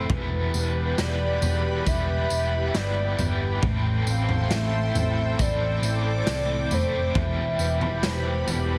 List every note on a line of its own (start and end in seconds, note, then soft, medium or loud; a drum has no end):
0.00 0.11 E3 medium
0.00 0.12 A3 soft
0.00 0.19 A3 medium
0.00 0.10 C4 medium
0.00 0.19 C4 medium
0.00 2.27 E4 medium
0.07 0.48 E1 loud
0.07 1.85 E2 medium
0.07 1.86 B2 medium
0.07 3.63 E3 medium
0.07 1.84 E3 medium
0.07 3.59 G4 medium
0.07 3.59 B4 medium
0.07 8.78 G5 medium
0.07 3.59 B5 medium
0.07 kick medium
0.07 floor tom loud
0.12 1.86 G3 medium
0.12 1.87 B3 medium
0.12 1.01 B4 medium
0.16 1.90 E4 medium
0.54 0.93 E1 medium
0.54 1.41 B3 medium
0.54 tambourine medium
0.98 1.37 E1 loud
0.98 1.84 G3 medium
0.98 1.89 D5 loud
0.98 snare loud
0.98 tambourine medium
1.42 1.81 E1 medium
1.42 2.73 B3 medium
1.42 floor tom medium
1.42 tambourine medium
1.84 2.25 E1 loud
1.84 3.22 E3 medium
1.84 3.17 G3 medium
1.84 3.19 G3 medium
1.84 2.78 E5 loud
1.84 kick medium
1.84 floor tom medium
1.84 tambourine medium
1.89 3.18 B3 medium
1.89 3.16 E4 medium
2.30 2.69 E1 loud
2.30 5.80 E4 medium
2.30 tambourine medium
2.74 3.13 G1 loud
2.74 3.71 B3 medium
2.74 3.41 D5 medium
2.74 snare loud
2.74 tambourine medium
3.17 3.57 G1 loud
3.17 3.71 G3 medium
3.17 3.64 G3 soft
3.17 3.63 B3 soft
3.17 3.62 E4 medium
3.17 floor tom medium
3.17 tambourine medium
3.23 3.61 E3 soft
3.60 4.01 A1 loud
3.60 5.37 A2 medium
3.60 7.16 A2 medium
3.60 5.37 E3 medium
3.60 7.11 A4 medium
3.60 7.11 C5 medium
3.60 5.37 C6 medium
3.60 kick loud
3.60 floor tom loud
3.64 5.38 A3 loud
3.64 5.40 C4 loud
4.07 4.45 A1 medium
4.07 4.93 C4 medium
4.07 4.55 F5 loud
4.07 tambourine medium
4.29 floor tom medium
4.50 4.89 A1 loud
4.50 6.70 A3 medium
4.50 5.42 E5 loud
4.50 snare loud
4.50 tambourine medium
4.95 5.34 A1 medium
4.95 6.26 C4 medium
4.95 floor tom medium
4.95 tambourine medium
5.37 5.78 A1 loud
5.37 7.17 E3 medium
5.37 7.15 E3 medium
5.37 6.72 A3 medium
5.37 6.75 D5 loud
5.37 7.13 D6 medium
5.37 kick medium
5.37 floor tom medium
5.37 tambourine medium
5.41 6.72 C4 medium
5.41 6.70 E4 medium
5.82 6.21 A1 loud
5.82 8.78 E4 medium
5.82 tambourine medium
6.27 6.66 C2 medium
6.27 7.24 C4 medium
6.27 snare loud
6.27 tambourine medium
6.70 7.10 F1 medium
6.70 7.24 A3 medium
6.70 7.16 C4 soft
6.70 7.15 E4 medium
6.70 7.17 C5 medium
6.70 floor tom medium
6.70 tambourine medium
6.76 7.18 A3 soft
7.13 7.54 E1 loud
7.13 8.78 E2 medium
7.13 8.78 B2 medium
7.13 8.78 E3 medium
7.13 8.78 G4 medium
7.13 8.78 B5 medium
7.13 kick medium
7.13 floor tom loud
7.17 8.78 E3 medium
7.17 8.78 G3 medium
7.17 8.07 E5 loud
7.22 8.78 E4 medium
7.59 7.98 E1 loud
7.59 8.47 B3 medium
7.59 tambourine medium
7.81 floor tom medium
8.03 8.42 E1 loud
8.03 8.78 G3 medium
8.03 8.51 C5 medium
8.03 snare loud
8.03 tambourine medium
8.47 8.78 E1 medium
8.47 8.78 B3 medium
8.47 8.78 B4 medium
8.47 floor tom medium
8.47 tambourine medium